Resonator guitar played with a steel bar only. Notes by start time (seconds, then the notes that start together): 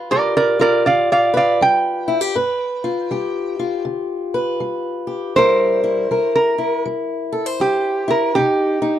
0.11 A#4 D5
0.37 A#4 D5
0.61 A#4 D5
0.86 D5 F5
1.12 D5 F5
1.37 D5 F5
1.62 G5
5.36 C5
6.36 A#4
7.61 G4
8.10 A#4
8.35 G4